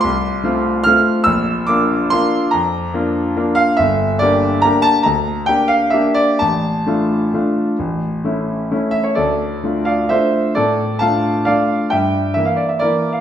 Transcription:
\new Staff \with { instrumentName = "Grand piano" } { \time 3/4 \key d \minor \tempo 4 = 137 << { c'''2 f'''4 | e'''4 d'''4 c'''4 | bes''2 r8 f''8 | e''4 d''4 bes''8 a''8 |
bes''4 g''8 f''8 e''8 d''8 | a''2.~ | a''2 r8 e''16 cis''16 | <a' d''>4. <d'' f''>8 <c'' e''>4 |
<a' d''>4 <f'' a''>4 <d'' f''>4 | <e'' g''>4 e''16 f''16 d''16 e''16 <bes' d''>8. f''16 | } \\ { c,4 <a c' f'>4 <a c' f'>4 | bes,,4 <bes d' f'>4 <bes d' f'>4 | f,4 <bes d' f'>4 <bes d' f'>4 | g,,4 <bes d' g'>4 <bes d' g'>4 |
d,4 <bes d' g'>4 <bes d' g'>4 | a,,4 <a d' f'>4 <a d' f'>4 | a,,4 <a cis' e'>4 <a cis' e'>4 | d,4 <a d' f'>4 <a d' f'>4 |
a,4 <a d' f'>4 <a d' f'>4 | g,4 <e bes e'>4 <e bes e'>4 | } >> }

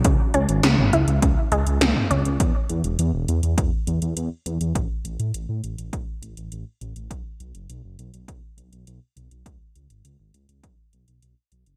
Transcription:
<<
  \new Staff \with { instrumentName = "Synth arpeggio sound" } { \clef bass \time 4/4 \key cis \minor \tempo 4 = 102 cis8 cis'8 cis8 e'8 cis8 gis8 cis8 cis'8 | r1 | r1 | r1 |
r1 | }
  \new Staff \with { instrumentName = "Detuned saw bass" } { \clef bass \time 4/4 \key cis \minor cis,16 r16 cis,16 gis,,16 cis,16 gis,,16 cis,16 cis,16 cis,16 r16 cis,16 cis,16 cis,16 r16 cis,16 cis,16 | e,16 r16 e,16 e,,16 e,16 e,,16 e,16 e,16 e,16 r16 e,16 e,16 e,16 r16 e,16 e,16 | a,,16 r16 a,,16 a,16 a,,16 a,16 a,,16 a,,16 a,,16 r16 a,,16 a,,16 a,,16 r16 a,,16 a,,16 | b,,16 r16 b,,16 fis,,16 b,,16 fis,,16 b,,16 b,,16 b,,16 r16 b,,16 b,,16 b,,16 r16 b,,16 b,,16 |
cis,16 r16 cis,16 gis,,16 cis,16 gis,,16 cis,16 cis,16 b,,16 r16 b,,16 b,,16 b,,16 r16 b,,16 fis,,16 | }
  \new DrumStaff \with { instrumentName = "Drums" } \drummode { \time 4/4 <hh bd>8 hh16 hh16 <hh sn>16 toml16 hh16 hh16 <hh bd>8 hh16 hh16 <hh sn>16 toml16 hh16 hh16 | <hh bd>8 hh16 hh16 hh8 hh16 hh16 <hh bd>8 hh16 hh16 hh8 hh16 hh16 | <hh bd>8 hh16 hh16 hh8 hh16 hh16 <hh bd>8 hh16 hh16 hh8 hh16 hh16 | <hh bd>8 hh16 hh16 hh8 hh16 hh16 <hh bd>8 hh16 hh16 hh8 hh16 hh16 |
<hh bd>8 hh16 hh16 hh8 hh16 hh16 <hh bd>8 hh16 hh16 hh8 hh16 hh16 | }
>>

